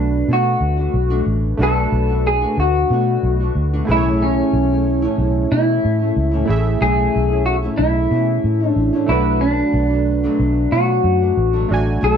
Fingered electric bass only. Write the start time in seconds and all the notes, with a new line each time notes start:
Already playing: B1
0.28 B2
0.61 D2
0.94 B1
1.26 A1
1.59 B1
1.92 B1
2.58 D2
2.90 B2
3.23 B1
3.55 D2
3.89 B1
4.53 B1
5.18 B1
5.52 B2
5.85 A2
6.17 C#2
6.49 A1
6.81 B1
7.16 B1
7.79 B1
8.11 B2
8.44 A2
8.76 A1
9.09 B1
9.74 B1
10.40 B1
10.72 B2
11.04 F#2
11.37 A1
11.71 A1
12.03 B1